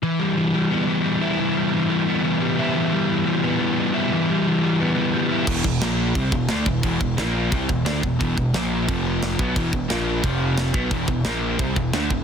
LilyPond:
<<
  \new Staff \with { instrumentName = "Distorted electric guitar" } { \clef bass \time 4/4 \key e \minor \tempo 4 = 176 e8 g8 e8 g8 b8 e8 g8 e'8 | e8 g8 e8 g8 b8 e8 g8 e'8 | e8 g8 e8 g8 b8 e8 g8 e'8 | e8 g8 e8 g8 b8 e8 g8 e'8 |
<e, b, e>8 <e, b,>8 <ais, eis ais>4 <c g c'>8 <e, b,>8 <d a d'>8 <e, b,>8 | <e, b, e>8 <e, b,>8 <ais, eis ais>4 <c g c'>8 <e, b,>8 <d a d'>8 <e, b,>8 | <e, b, e>8 <e, b,>8 <ais, eis ais>4 <f, c f>4. <b, fis b>8 | <e, b, e>8 <e, b,>8 <ais, eis ais>4 <f, c f>4. <b, fis b>8 |
<e, b, e>8 <e, b,>8 <ais, eis ais>4 <c g c'>8 <e, b,>8 <d a d'>8 <e, b,>8 | }
  \new Staff \with { instrumentName = "Picked electric bass" } { \clef bass \time 4/4 \key e \minor r1 | r1 | r1 | r1 |
e,,8 e,,8 ais,,4 c,8 e,,8 d,8 e,,8 | e,,8 e,,8 ais,,4 c,8 e,,8 d,8 e,,8 | e,,8 e,,8 ais,,4 f,,4. b,,8 | e,,8 e,,8 ais,,4 f,,4. b,,8 |
e,,8 e,,8 ais,,4 c,8 e,,8 d,8 e,,8 | }
  \new DrumStaff \with { instrumentName = "Drums" } \drummode { \time 4/4 r4 r4 r4 r4 | r4 r4 r4 r4 | r4 r4 r4 r4 | r4 r4 r4 r4 |
<cymc bd>8 bd8 <cymc sn>4 <cymc bd>8 bd8 <cymc sn>8 bd8 | <cymc bd>8 bd8 <cymc sn>4 <cymc bd>8 bd8 <cymc sn>8 bd8 | <cymc bd>8 bd8 <cymc sn>4 <cymc bd>4 <cymc sn>8 bd8 | <cymc bd>8 bd8 <cymc sn>4 <cymc bd>4 <cymc sn>8 bd8 |
<cymc bd>8 bd8 <cymc sn>4 <cymc bd>8 bd8 <cymc sn>8 bd8 | }
>>